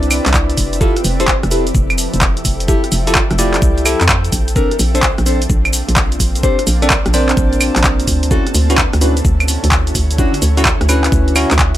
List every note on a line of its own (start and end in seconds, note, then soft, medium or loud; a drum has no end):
0.00 0.20 C2 loud
0.00 2.34 C4 medium
0.00 0.77 D4 medium
0.00 0.79 D4 loud
0.00 0.77 E4 medium
0.00 0.79 E4 medium
0.00 4.52 G4 medium
0.00 0.77 B4 medium
0.00 1.46 B4 medium
0.00 0.79 D5 loud
0.00 2.34 D5 medium
0.00 6.09 E5 medium
0.00 closed hi-hat soft
0.00 shaker soft
0.11 open hi-hat loud
0.11 claves medium
0.11 shaker medium
0.26 0.55 C2 medium
0.26 clap medium
0.26 closed hi-hat medium
0.26 shaker soft
0.34 kick loud
0.34 clap loud
0.34 shaker soft
0.50 closed hi-hat medium
0.50 shaker soft
0.57 0.91 F1 medium
0.57 kick medium
0.57 open hi-hat loud
0.57 shaker medium
0.73 closed hi-hat medium
0.73 shaker soft
0.81 5.45 F3 medium
0.81 8.27 C4 medium
0.81 4.52 E4 medium
0.81 0.94 E4 medium
0.81 1.00 F4 medium
0.81 0.94 G4 medium
0.81 0.94 A4 loud
0.81 6.39 A4 medium
0.81 1.00 A4 loud
0.81 kick loud
0.81 shaker soft
0.96 cross-stick soft
0.96 closed hi-hat soft
0.96 shaker soft
1.04 1.38 F1 loud
1.04 open hi-hat loud
1.04 shaker medium
1.10 4.56 A4 medium
1.20 1.27 E4 loud
1.20 1.27 G4 medium
1.20 1.34 A4 medium
1.20 1.27 A4 loud
1.20 1.34 C5 medium
1.20 closed hi-hat medium
1.20 shaker soft
1.28 kick loud
1.28 clap loud
1.28 shaker soft
1.40 1.72 F1 loud
1.40 5.65 G5 medium
1.40 cross-stick medium
1.40 closed hi-hat soft
1.40 shaker soft
1.51 1.64 E4 medium
1.51 1.66 G4 medium
1.51 1.64 G4 medium
1.51 1.64 A4 medium
1.51 1.66 B4 medium
1.51 open hi-hat loud
1.51 shaker medium
1.67 closed hi-hat medium
1.67 shaker soft
1.75 2.08 F1 loud
1.75 kick loud
1.75 shaker soft
1.90 closed hi-hat soft
1.90 claves medium
1.90 shaker soft
1.98 open hi-hat loud
1.98 shaker medium
2.14 2.42 F1 loud
2.14 closed hi-hat medium
2.14 shaker soft
2.21 kick loud
2.21 clap loud
2.21 shaker soft
2.37 closed hi-hat medium
2.37 shaker soft
2.45 2.78 F1 medium
2.45 kick medium
2.45 open hi-hat loud
2.45 shaker medium
2.60 closed hi-hat medium
2.60 shaker soft
2.68 2.82 E4 medium
2.68 2.87 E4 medium
2.68 2.87 G4 loud
2.68 2.82 G4 medium
2.68 2.82 A4 loud
2.68 kick loud
2.68 shaker soft
2.84 cross-stick soft
2.84 closed hi-hat medium
2.84 shaker soft
2.92 3.25 F1 loud
2.92 open hi-hat loud
2.92 shaker medium
3.07 3.14 E4 loud
3.07 3.22 F4 medium
3.07 3.14 G4 medium
3.07 3.14 A4 loud
3.07 3.22 A4 loud
3.07 closed hi-hat medium
3.07 shaker soft
3.15 kick loud
3.15 clap loud
3.15 shaker soft
3.31 3.59 F1 loud
3.31 cross-stick medium
3.31 closed hi-hat soft
3.31 shaker soft
3.39 3.53 A3 medium
3.39 3.84 E4 loud
3.39 3.53 F4 medium
3.39 3.84 G4 loud
3.39 3.84 D5 loud
3.39 open hi-hat medium
3.39 shaker medium
3.54 clap medium
3.54 closed hi-hat medium
3.54 shaker soft
3.62 3.95 C2 medium
3.62 kick loud
3.62 shaker soft
3.78 closed hi-hat soft
3.78 shaker soft
3.86 3.99 E4 loud
3.86 3.99 G4 medium
3.86 3.99 A4 loud
3.86 open hi-hat loud
3.86 claves medium
3.86 shaker medium
4.01 4.30 F2 medium
4.01 clap medium
4.01 closed hi-hat medium
4.01 shaker soft
4.09 kick loud
4.09 clap loud
4.09 shaker soft
4.24 closed hi-hat medium
4.24 shaker soft
4.32 4.66 A#1 medium
4.32 kick medium
4.32 open hi-hat loud
4.32 shaker medium
4.48 closed hi-hat medium
4.48 shaker soft
4.56 8.31 C4 medium
4.56 4.69 C4 medium
4.56 4.75 D4 medium
4.56 8.27 D4 medium
4.56 4.69 D4 medium
4.56 8.27 F4 medium
4.56 4.69 A4 loud
4.56 4.75 A#4 loud
4.56 kick loud
4.56 shaker soft
4.71 cross-stick soft
4.71 closed hi-hat medium
4.71 shaker soft
4.79 5.13 A#1 loud
4.79 open hi-hat loud
4.79 shaker medium
4.84 8.31 A#3 medium
4.95 5.02 C4 medium
4.95 5.02 D4 medium
4.95 5.09 A4 medium
4.95 5.02 A4 loud
4.95 5.09 C5 medium
4.95 closed hi-hat medium
4.95 shaker soft
5.03 kick loud
5.03 clap loud
5.03 shaker soft
5.18 5.47 A#1 loud
5.18 cross-stick medium
5.18 closed hi-hat soft
5.18 shaker soft
5.26 5.40 C4 medium
5.26 5.40 D4 medium
5.26 5.41 A4 medium
5.26 5.40 A4 medium
5.26 5.41 C5 medium
5.26 open hi-hat loud
5.26 shaker medium
5.40 8.31 D5 medium
5.40 9.76 A5 medium
5.40 closed hi-hat medium
5.40 shaker soft
5.50 5.83 A#1 loud
5.50 kick loud
5.50 shaker soft
5.65 closed hi-hat soft
5.65 claves medium
5.65 shaker soft
5.73 open hi-hat loud
5.73 shaker medium
5.88 6.17 A#1 loud
5.88 closed hi-hat medium
5.88 shaker soft
5.97 kick loud
5.97 clap loud
5.97 shaker soft
6.12 closed hi-hat medium
6.12 shaker soft
6.20 6.53 A#1 medium
6.20 kick medium
6.20 open hi-hat loud
6.20 shaker medium
6.35 closed hi-hat medium
6.35 shaker soft
6.43 6.57 C4 medium
6.43 6.57 D4 medium
6.43 8.29 G4 medium
6.43 6.57 G4 loud
6.43 6.62 A4 medium
6.43 6.62 C5 loud
6.43 kick loud
6.43 shaker soft
6.59 cross-stick soft
6.59 closed hi-hat medium
6.59 shaker soft
6.67 7.00 A#1 loud
6.67 open hi-hat loud
6.67 shaker medium
6.82 6.89 C4 loud
6.82 6.89 D4 medium
6.82 6.89 A4 loud
6.82 6.97 A#4 medium
6.82 6.97 D5 medium
6.82 closed hi-hat medium
6.82 shaker soft
6.90 kick loud
6.90 clap loud
6.90 shaker soft
7.06 7.34 A#1 loud
7.06 cross-stick medium
7.06 closed hi-hat soft
7.06 shaker soft
7.14 8.29 C4 loud
7.14 8.29 D4 loud
7.14 7.28 A#4 medium
7.14 8.29 C5 loud
7.14 7.28 D5 medium
7.14 open hi-hat loud
7.14 shaker medium
7.29 clap medium
7.29 closed hi-hat medium
7.29 shaker soft
7.37 7.70 A#1 loud
7.37 kick loud
7.37 shaker soft
7.53 closed hi-hat soft
7.53 shaker soft
7.61 open hi-hat loud
7.61 claves medium
7.61 shaker medium
7.76 8.05 A#1 medium
7.76 clap medium
7.76 closed hi-hat medium
7.76 shaker soft
7.84 kick loud
7.84 clap loud
7.84 shaker soft
8.00 closed hi-hat medium
8.00 shaker soft
8.07 8.41 D2 medium
8.07 kick medium
8.07 open hi-hat loud
8.07 shaker medium
8.23 closed hi-hat medium
8.23 shaker soft
8.31 11.78 D3 medium
8.31 8.44 C#4 medium
8.31 11.78 C#4 medium
8.31 8.44 E4 medium
8.31 11.78 E4 medium
8.31 8.44 F#4 loud
8.31 8.50 F#4 medium
8.31 11.78 F#4 medium
8.31 11.78 A4 medium
8.31 8.50 A4 loud
8.31 kick loud
8.31 shaker soft
8.47 cross-stick soft
8.47 closed hi-hat medium
8.47 shaker soft
8.54 8.88 D2 loud
8.54 11.78 C#5 medium
8.54 open hi-hat loud
8.54 shaker medium
8.70 8.77 C#4 medium
8.70 8.84 D4 medium
8.70 8.77 E4 medium
8.70 8.77 F#4 loud
8.70 8.84 B4 loud
8.70 closed hi-hat medium
8.70 shaker soft
8.78 kick loud
8.78 clap loud
8.78 shaker soft
8.93 9.22 D2 loud
8.93 cross-stick medium
8.93 closed hi-hat soft
8.93 shaker soft
9.01 9.15 C#4 medium
9.01 9.16 D4 medium
9.01 9.15 E4 medium
9.01 9.15 F#4 medium
9.01 9.16 B4 medium
9.01 open hi-hat loud
9.01 shaker medium
9.09 11.78 E5 medium
9.17 closed hi-hat medium
9.17 shaker soft
9.25 9.58 D2 loud
9.25 kick loud
9.25 shaker soft
9.40 closed hi-hat soft
9.40 claves medium
9.40 shaker soft
9.48 open hi-hat loud
9.48 shaker medium
9.64 9.92 D2 loud
9.64 closed hi-hat medium
9.64 shaker soft
9.72 kick loud
9.72 clap loud
9.72 shaker soft
9.87 closed hi-hat medium
9.87 shaker soft
9.92 10.28 D2 medium
9.92 11.78 F#5 medium
9.92 kick medium
9.92 open hi-hat loud
9.92 shaker medium
10.11 closed hi-hat medium
10.11 shaker soft
10.18 10.32 C#4 medium
10.18 10.37 D4 medium
10.18 10.32 E4 medium
10.18 10.32 F#4 medium
10.18 10.37 F#4 medium
10.18 kick loud
10.18 shaker soft
10.34 cross-stick soft
10.34 closed hi-hat medium
10.34 shaker soft
10.42 10.75 D2 loud
10.42 open hi-hat loud
10.42 shaker medium
10.57 10.64 C#4 medium
10.57 10.64 E4 medium
10.57 10.72 F#4 medium
10.57 10.64 F#4 loud
10.57 10.72 A4 medium
10.57 closed hi-hat medium
10.57 shaker soft
10.65 kick loud
10.65 clap loud
10.65 shaker soft
10.81 11.09 D2 loud
10.81 cross-stick medium
10.81 closed hi-hat soft
10.81 shaker soft
10.89 11.34 C#4 loud
10.89 11.04 D4 medium
10.89 11.34 E4 medium
10.89 11.04 F#4 medium
10.89 11.34 B4 loud
10.89 open hi-hat loud
10.89 claves medium
10.89 shaker medium
11.04 clap medium
11.04 closed hi-hat medium
11.04 shaker soft
11.12 11.45 D2 loud
11.12 kick loud
11.12 shaker soft
11.28 closed hi-hat soft
11.28 shaker soft
11.36 11.49 C#4 loud
11.36 11.49 E4 medium
11.36 11.49 F#4 loud
11.36 open hi-hat loud
11.36 claves medium
11.36 shaker medium
11.51 11.78 D2 loud
11.51 clap medium
11.51 closed hi-hat medium
11.51 shaker soft
11.59 kick loud
11.59 clap loud
11.59 shaker soft
11.75 closed hi-hat medium
11.75 shaker soft